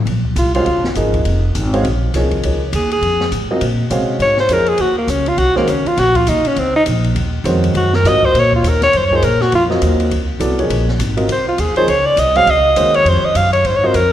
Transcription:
0.06 A#1, ride
0.24 kick
0.36 C2 F4, hi-hat pedal, ride
0.55 G#3 C#4 F4 F#4 C5 F5, ride
0.66 C#2, ride
0.76 A#1
0.84 G#1, snare
0.95 G#1 F3 A#3 D#4 G#4 D#5, hi-hat pedal, ride
1.14 kick, ride
1.25 F1, ride
1.55 G#1, hi-hat pedal, ride
1.73 G#3 C#4 F#4 C5 F5, ride
1.84 A#1, ride
2.14 C2 F3 A#3 D#4 G#4 C#5, snare, hi-hat pedal, ride
2.31 kick, ride
2.43 C#2 F3 A#3 D#4 G#4 C#5, ride
2.73 D#2 G#4, hi-hat pedal, ride
2.91 G#4, ride
3.01 F2, ride
3.21 snare
3.32 A2, hi-hat pedal, ride
3.51 F#3 C4 F4 A#4 D#5
3.61 A#2, ride
3.90 C3 G#3 C#4 F#4 C5 F5, hi-hat pedal, ride
4.19 G#2 C#5, ride
4.37 C5, snare
4.48 F2 F3 A#3 D#4 G#4 C#5, hi-hat pedal, ride
4.53 A#4
4.66 G#4, ride
4.78 D#2 F#4, ride
4.98 A#3
5.07 C#2 C#4, hi-hat pedal, ride
5.26 F4, ride
5.37 C2 F#4, ride
5.55 D#3 G#3 A#3 C#4 F#4 C5, muted upright bass stroke, snare
5.67 C#2 C#4, hi-hat pedal, ride
5.86 F4, muted upright bass stroke, ride
5.97 A#1 F#4, snare, ride
6.15 F4, kick, ride
6.27 D#2 D#4, hi-hat pedal, ride
6.45 C#4, muted upright bass stroke, ride
6.56 C#2 C4, ride
6.76 D#4
6.86 A#1, hi-hat pedal, ride
7.04 ride
7.15 D#2, ride
7.44 F2 D#3 G#3 C#4 F#4 C5, hi-hat pedal, ride
7.64 ride
7.74 F#2 F#4, ride
7.93 A#4, snare
8.04 G#2 F#3 C4 F4 A#4 D#5, snare, hi-hat pedal, ride
8.08 D#5
8.23 C5, kick
8.34 A#2, ride
8.39 C#5
8.52 F4, kick
8.63 D#2, hi-hat pedal, ride
8.69 A#4
8.82 C#5, snare, ride
8.93 F#2 C5, ride
9.05 C#5
9.11 F3 A#3 D#4 G#4 C#5, kick
9.16 C5
9.22 A#2 A#4, hi-hat pedal, ride
9.41 F#4, snare
9.52 F2 F4, ride
9.70 F#3 C4 F4 A#4 D#5, snare
9.82 D#2, hi-hat pedal, ride
10.00 ride
10.10 C#2, ride
10.40 C2 F#3 B3 E4 A4 D5, hi-hat pedal, ride
10.59 F3 A#3 D#4 G#4 C#5, ride
10.69 A#1, ride
10.88 snare
10.99 G#1, hi-hat pedal, ride
11.17 F#3 C4 F4 A#4 D#5, ride
11.28 C2, ride
11.32 C5
11.48 F4
11.58 D#2 G#4, hi-hat pedal, ride
11.76 F3 A#3 D#4 G#4 C5 C#5, muted upright bass stroke, ride
11.87 C#2 C#5, ride
12.06 D5
12.16 C2 D#5, hi-hat pedal, ride
12.35 G#3 C#4 F#4 C5 F5, ride
12.46 C#2 D#5, ride
12.76 D#2 D#3 G#3 C#4 F#4 C5, hi-hat pedal, ride
12.94 C#5, ride
13.05 F2 C5, ride
13.23 D#5, muted upright bass stroke
13.35 F#2 F5, hi-hat pedal, ride
13.53 C#5, ride
13.65 G#2 C5, ride
13.76 C#5
13.83 F#3 C4 F4 A#4 C5 D#5
13.94 F2 A#4, hi-hat pedal, ride

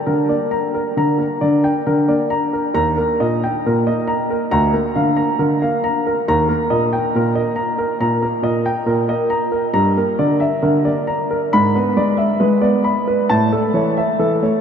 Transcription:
0.06 D3 A#4
0.29 A#3 D5
0.51 A#5
0.74 A#4
0.97 D3 A#5
1.18 A#3 A#4
1.41 D3 D5
1.64 G5
1.87 D3 A#4
2.08 A#3 D5
2.30 A#5
2.53 A#4
2.74 D#2 A#5
2.97 A#3 A#4
3.20 A#2 D#5
3.44 G5
3.66 A#2 A#4
3.87 A#3 D#5
4.07 A#5
4.30 A#4
4.51 D2 A#5
4.73 A#3 A#4
4.96 D3 F5
5.17 A#5
5.39 D3 A#4
5.62 A#3 F5
5.84 A#5
6.07 A#4
6.28 D#2 A#5
6.48 A#3 A#4
6.70 A#2 D#5
6.93 G5
7.15 A#2 A#4
7.35 A#3 D#5
7.56 A#5
7.78 A#4
8.00 A#2 A#5
8.22 A#3 A#4
8.42 A#2 D#5
8.66 G5
8.86 A#2 A#4
9.08 A#3 D#5
9.30 A#5
9.52 A#4
9.74 G2 A#5
9.97 A#3 A#4
10.19 D3 D5
10.40 E5
10.62 D3 A#4
10.85 A#3 D5
11.07 A#5
11.31 A#4
11.53 G#2 B5
11.75 B3 B4
11.97 G#3 D5
12.17 E5
12.40 G#3 B4
12.61 B3 D5
12.84 B5
13.08 B4
13.30 A2 A5
13.52 A3 A4
13.74 E3 C#5
13.97 E5
14.19 E3 A4
14.43 A3 C#5

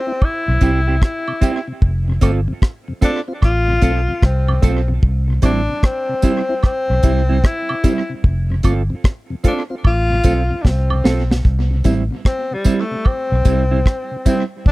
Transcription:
Already playing: C4
0.07 C4 E4
0.22 E4, kick, high woodblock
0.48 B1 C3
0.61 C2 G3 C4 E4 G4, kick, closed hi-hat, tambourine
0.87 C3 C4 E4 G4
1.02 E4, kick, cross-stick
1.28 C3, high woodblock
1.41 G3 C4 E4 G4, kick, closed hi-hat, tambourine
1.68 C3
1.82 F1, kick
2.08 F2 C3
2.21 G1 A3 C4 F4 A4, kick, closed hi-hat, tambourine, high woodblock
2.48 F2 C3
2.62 kick, cross-stick
2.88 F2 C3
3.01 A3 C4 D4 F4 A4, kick, closed hi-hat, tambourine
3.28 C4 F4
3.42 A1 F4, kick, cross-stick, high woodblock
3.68 F2 C3
3.82 B1 A3 C4 F4 A4, kick, closed hi-hat, tambourine
4.08 F2 C3
4.22 C2 C4, kick, cross-stick
4.48 F2 C3, high woodblock
4.62 B1 A3 C4 F4 A4, kick, closed hi-hat, tambourine
4.88 F2 C3, muted clean electric guitar stroke
5.03 C2, kick
5.28 C3
5.42 A1 G3 C4 D4 E4, kick, closed hi-hat, tambourine, high woodblock
5.69 C3
5.83 C4, kick, cross-stick
6.09 C3
6.22 G3 C4 E4, kick, closed hi-hat, tambourine
6.49 C4 E4
6.63 C4, kick, cross-stick, high woodblock
6.89 B1 C3
7.03 C2 G3 C4 E4, kick, closed hi-hat, tambourine
7.29 C3 G3 C4 E4
7.44 E4, kick, cross-stick
7.69 C3, high woodblock
7.84 G3 C4 E4, kick, closed hi-hat, tambourine
8.10 C3
8.24 F1, kick
8.50 F2 C3
8.63 G1 A3 C4 F4 A4, kick, closed hi-hat, tambourine, high woodblock
8.90 F2 C3
9.04 kick, cross-stick
9.30 F2 C3
9.44 A3 C4 D4 F4 A4, kick, closed hi-hat, tambourine
9.70 C4 F4
9.84 A1 F4, kick, high woodblock
10.10 F2 C3
10.24 B1 A3 C4 F4 A4, kick, closed hi-hat, tambourine
10.50 F2 C3
10.62 C2 D4, kick, snare
10.67 C4
10.90 F2 C3, high woodblock
11.04 B1 A3 C4 F4 A4, snare, tambourine
11.30 F2 C3, muted clean electric guitar stroke, snare
11.45 C2, kick
11.71 C3
11.84 A1 G3 C4 E4, kick, closed hi-hat, tambourine
12.11 C3
12.25 C4, kick, cross-stick
12.51 C3 G3
12.64 G3 C4 E4, kick, closed hi-hat, tambourine
12.80 A3
12.91 C3
13.05 C4, kick, high woodblock
13.31 B1 C3
13.45 C2 G3 C4 E4, kick, closed hi-hat, tambourine
13.71 C3 G3 C4 E4
13.86 kick, cross-stick
14.11 C3
14.25 G3 C4 E4, kick, closed hi-hat, tambourine
14.66 F1 D4, kick

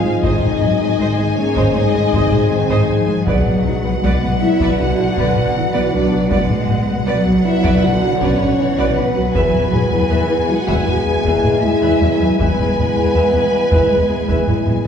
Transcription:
Already playing: F3 G#3 D#4 F4 G#4 D#5 F5 G#5
0.04 G#1 G#3 D#4 G#4 C5
0.23 G#1 G#2 D#3 G#3 D#4 G#4 C5 D#5 G#5, taiko
0.42 G#2, taiko mid
0.61 G#1 G#2 F#3 C4 G#4 C5, taiko mid
0.80 G#1 G#2 G#4 C5
0.99 G#1 G#2 G#3 C5 D#5
1.18 G#1 G#3 D#4 C5
1.37 G#3 A#3 C#4 C#5
1.56 G#1 G#2 G#3 C5 D#5, taiko
1.74 G#1 G#2 G#3 C4 D#4 C5 D#5
1.94 G#1 G#2 G#4 C5
2.13 G#1 G#2 C3 G#3 C5 D#5, taiko
2.32 G#1 G#2 G#4 C5, taiko mid
2.51 G#2 D#3 C4 C5
2.70 G#1 G#2 G#3 C5 D#5
2.89 G#1 G#2 F3 C4 C5
3.07 G#1 G#3 D#4 G#4 C5
3.26 B1 B2 D3 F#3 B3 D4 F#4 B4 D5 F#5, taiko
3.46 B2, taiko mid
3.65 B1 B2 D4 F#4 B4, taiko mid
3.84 B1 B2 B4
4.03 B1 B2 G#3 B3 B4 D5
4.22 B1 B3 F#4 B4
4.40 F#3 B3 E4 E5
4.60 B1 B2 B3 B4 D5, taiko
4.78 B1 B2 D3 D4 F#4 B4 F#5
4.98 B1 B2 D4 F#4 B4
5.17 B1 B2 B3 B4 D5, taiko
5.36 B1 B2 B4, taiko mid
5.55 B2 E3
5.74 B1 B2 B3 B4 D5
5.93 B1 B2 F#3 D4 B4 D5
6.12 B1 B3 F#4 B4
6.30 B1 B2 D3 F#3 G#3 B3 F#4 B4 D5 F#5, taiko
6.50 B2, taiko mid
6.69 B1 B2 D4 F#4 B4, taiko mid
6.88 B1 B2 B4
7.07 B1 B2 F#3 B3 B4 D5
7.26 B1 B3 F#4 B4
7.45 B3 E4 E5
7.64 B1 B2 B3 B4 D5, taiko
7.82 B1 B2 D3 D4 F#4 B4 F#5
8.02 B1 B2 D4 F#4 B4
8.20 B1 B2 B3 C#4 B4 C#5 D5, taiko
8.40 B1 B2 B4, taiko mid
8.59 B2 E3
8.78 B1 B2 B3 B4 D5
8.96 B1 B2 F#3 B3 D4 B4
9.15 B1 B3 F#4 B4
9.34 E2 B2 E3 G#3 E4 G#4 B4 E5 G#5, taiko
9.54 E2, taiko mid
9.72 E2 G#3 G#4 B4, taiko mid
9.91 E2 E4 B4
10.10 E2 E3 B4 E5
10.28 E2 E3 B3 B4
10.48 E3 G#3 F#4 F#5
10.67 E2 E3 B4 E5, taiko
10.86 E2 G#3 B3 G#4 B4 G#5
11.05 E2 G#3 G#4 B4
11.25 E2 E3 A#3 B4 E5, taiko
11.43 E2 E4 B4, taiko mid
11.63 E2 G#3 E4 E5
11.82 E2 E3 B4 E5
12.01 E2 F#3 G#3 B4
12.19 E2 E3 B3 G#4 B4
12.38 E2 E3 G#3 B3 E4 G#4 B4 E5 G#5, taiko
12.58 E2, taiko mid
12.77 E2 G#3 G#4 B4, taiko mid
12.96 E2 E4 B4
13.15 E2 E3 B4 E5
13.34 E2 E3 B3 B4
13.53 E3
13.72 E2 E3 B4 E5, taiko
13.91 E2 G#3 B4
14.09 E2 G#3 G#4 B4
14.28 E2 E3 B4 E5, taiko
14.47 E2 E4 B4, taiko mid
14.66 E2, taiko mid

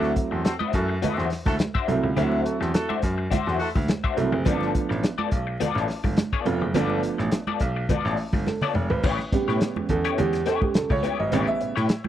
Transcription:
Already playing: F#3 A3 C4 D4 E4 F#4 A4 C5 E5
0.03 snare, muted conga
0.16 kick, closed hi-hat
0.31 E2 C4 F#4 A4 C5, muted clean electric guitar stroke
0.44 C4 F#4 A4 C5, muted clean electric guitar stroke, snare, closed hi-hat, muted conga
0.59 D4 F#4 C5 E5, muted conga, high conga
0.73 F#2 A3 E4 F#4 A4, muted clean electric guitar stroke, kick, closed hi-hat
0.88 muted clean electric guitar stroke
1.02 A3 C#4 E4 F4 F#4 A4 B4 D#5, closed hi-hat, muted conga, high conga, low conga
1.13 D4 F#4 C5 E5
1.17 E2 F#3 A3 C4 F#4, snare, muted conga
1.30 muted clean electric guitar stroke, snare, open hi-hat
1.46 D2 A3 E4 F#4 A4, muted clean electric guitar stroke, kick, high conga
1.59 muted clean electric guitar stroke, snare, closed hi-hat, muted conga, high conga
1.74 D4 F#4 C5 E5, kick, muted conga
1.88 C2 F#3 A3 C4 E4, muted clean electric guitar stroke, closed hi-hat
2.03 C#2, muted clean electric guitar stroke
2.16 D2 F#3 A3 C4 D4 E4 F#4 C5 E5, closed hi-hat, low conga
2.32 muted conga
2.45 A3 E4 F#4 A4, closed hi-hat
2.60 E2 C4 F#4 A4 C5, muted clean electric guitar stroke, snare
2.74 A3 E4 F#4 A4, muted clean electric guitar stroke, snare, closed hi-hat, muted conga
2.89 D4 F#4 C5 E5, muted conga, high conga
3.02 F#2, muted clean electric guitar stroke, kick, snare, closed hi-hat
3.18 muted clean electric guitar stroke
3.31 D4 F#4 C5 E5, kick, closed hi-hat, muted conga, high conga, low conga
3.46 E2 F#3 A3 C4 F#4, snare, muted conga
3.59 A3 E4 F#4 A4, muted clean electric guitar stroke, open hi-hat
3.75 D2, muted clean electric guitar stroke, kick, high conga
3.88 muted clean electric guitar stroke, snare, closed hi-hat, muted conga, high conga
4.04 D4 F#4 C5 E5, kick
4.17 C2 F#3 A3 C4 E4, muted clean electric guitar stroke, closed hi-hat
4.32 F#1, muted clean electric guitar stroke
4.45 G1 F3 A3 A#3 B3 D4 F4 A4 D5, kick, closed hi-hat, muted conga, low conga
4.53 B3
4.61 snare, muted conga
4.75 kick, closed hi-hat
4.89 A1, muted clean electric guitar stroke, snare
5.03 muted clean electric guitar stroke, snare, closed hi-hat
5.18 B3 F4 A4 D5, muted conga, high conga
5.31 B1, muted clean electric guitar stroke, kick, closed hi-hat
5.47 muted clean electric guitar stroke
5.60 B3 F4 A4 D5, closed hi-hat, high conga, low conga
5.75 A1, snare, muted conga
5.88 muted clean electric guitar stroke, snare, open hi-hat
6.04 G1, muted clean electric guitar stroke, kick, high conga
6.17 muted clean electric guitar stroke, snare, closed hi-hat, muted conga, high conga
6.33 B3 F4 A4 D5, kick, muted conga
6.45 F1 F3 A3 B3 F4, muted clean electric guitar stroke, closed hi-hat
6.62 F#1, muted clean electric guitar stroke
6.74 G1 F3 A3 B3 D4 F4 A4 D5, closed hi-hat, muted conga, low conga
6.90 muted conga
7.03 closed hi-hat
7.18 A1, muted clean electric guitar stroke, snare
7.31 muted clean electric guitar stroke, snare, closed hi-hat
7.47 B3 F4 A4 D5, muted conga, high conga
7.60 B1, muted clean electric guitar stroke, kick, snare, closed hi-hat
7.76 muted clean electric guitar stroke
7.89 B3 F4 A4 D5, kick, closed hi-hat, muted conga, high conga, low conga
8.05 A1, snare
8.17 muted clean electric guitar stroke, open hi-hat
8.33 G1, muted clean electric guitar stroke, kick, high conga
8.47 A4, muted clean electric guitar stroke, snare, muted conga, high conga
8.61 B3 F4 A4 C#5 D5, high tom, muted conga
8.74 F1, muted clean electric guitar stroke, mid tom, high conga
8.90 G#1 B4, muted clean electric guitar stroke, floor tom
9.03 A1 B3 E4 G4 C#5, kick, crash, low conga
9.18 muted clean electric guitar stroke, snare, muted conga
9.32 A2 C#3 G3 B3 G4, muted clean electric guitar stroke, kick, closed hi-hat
9.48 A2 B3 E4 G4 C#5, snare
9.61 muted clean electric guitar stroke, snare, closed hi-hat
9.76 E2, muted clean electric guitar stroke, muted conga, high conga
9.89 E2 A4, kick, closed hi-hat, low conga
10.05 B3 E4 G4 C#5, closed hi-hat
10.18 E2 G4, closed hi-hat, high conga, low conga
10.33 muted clean electric guitar stroke, snare, closed hi-hat
10.46 B3 E4 G4 A4 C#5, snare, closed hi-hat
10.61 G4, muted clean electric guitar stroke, kick, high conga
10.74 C#2 A4, snare, closed hi-hat, high conga
10.90 C#2 C#5, muted clean electric guitar stroke, kick
11.03 B3 E4 G4 C#5, closed hi-hat, high conga
11.19 G#1 D#5, muted clean electric guitar stroke
11.32 A1 C#3 G3 B3 E4 G4 C#5, closed hi-hat, low conga
11.47 E5, muted clean electric guitar stroke, muted conga
11.60 A2, muted clean electric guitar stroke, closed hi-hat
11.76 A2 B3 E4 G4 C#5, snare
11.89 muted clean electric guitar stroke, snare, closed hi-hat
12.04 muted clean electric guitar stroke, muted conga, high conga

